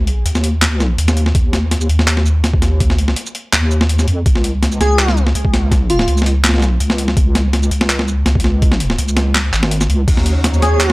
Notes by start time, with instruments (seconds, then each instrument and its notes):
Already playing: wobble bass D#2
0.07 closed hi-hat
0.26 wobble bass D#2, closed hi-hat
0.35 snare, shaker
0.44 closed hi-hat
0.62 clap, snare, closed hi-hat
0.80 snare, shaker
0.98 wobble bass D#2, closed hi-hat
1.08 snare, shaker
1.17 closed hi-hat
1.26 snare
1.35 kick, closed hi-hat
1.53 snare, closed hi-hat
1.71 snare, closed hi-hat
1.81 shaker
1.89 wobble bass D#2, closed hi-hat
1.99 snare
2.08 clap, closed hi-hat
2.17 snare
2.26 shaker
2.44 snare, closed hi-hat
2.54 kick
2.62 snare, closed hi-hat
2.80 kick, closed hi-hat
2.90 snare
2.98 closed hi-hat
3.08 snare
3.16 closed hi-hat
3.26 shaker
3.35 closed hi-hat
3.53 wobble bass D#2, clap, snare, closed hi-hat
3.71 shaker
3.81 snare
3.89 closed hi-hat
3.99 snare, shaker
4.08 wobble bass F2, closed hi-hat
4.26 wobble bass C#2, kick, closed hi-hat
4.36 snare
4.44 closed hi-hat
4.63 snare, closed hi-hat
4.72 shaker
4.80 wobble bass C#2, digital synth lead G#4, snare, closed hi-hat
4.99 clap, closed hi-hat
5.08 snare
5.17 shaker
5.27 snare
5.35 wobble bass C#2, closed hi-hat
5.45 kick
5.54 snare, closed hi-hat
5.71 kick, snare, closed hi-hat
5.90 digital synth lead F4, closed hi-hat
5.99 digital synth lead F4, snare
6.08 wobble bass C#2, closed hi-hat
6.18 shaker
6.22 snare
6.26 closed hi-hat
6.44 clap, snare, closed hi-hat
6.49 snare
6.54 wobble bass C2, snare
6.58 snare
6.62 snare, shaker
6.80 wobble bass C#2, closed hi-hat
6.90 snare
6.98 closed hi-hat
7.08 snare
7.17 wobble bass C#2, kick, closed hi-hat
7.35 snare, closed hi-hat
7.53 snare, closed hi-hat
7.63 shaker
7.71 wobble bass C#2, closed hi-hat
7.81 snare
7.90 clap, closed hi-hat
7.99 snare
8.08 shaker
8.26 wobble bass C#2, snare, closed hi-hat
8.35 kick
8.40 closed hi-hat
8.44 snare
8.62 kick, closed hi-hat
8.72 snare
8.80 closed hi-hat
8.90 snare
8.98 wobble bass C#2, closed hi-hat
9.08 shaker
9.17 snare, closed hi-hat
9.35 clap, snare
9.53 wobble bass G#1, clap, closed hi-hat, shaker
9.63 snare
9.71 closed hi-hat
9.81 snare, shaker
9.89 wobble bass C#2, closed hi-hat
10.07 string section C#3 F#3 D#4, synth texture C#5, kick, closed hi-hat, crash
10.17 snare
10.26 closed hi-hat
10.44 snare, closed hi-hat
10.54 shaker
10.62 wobble bass D#2, digital synth lead G#4, snare, closed hi-hat
10.80 clap, closed hi-hat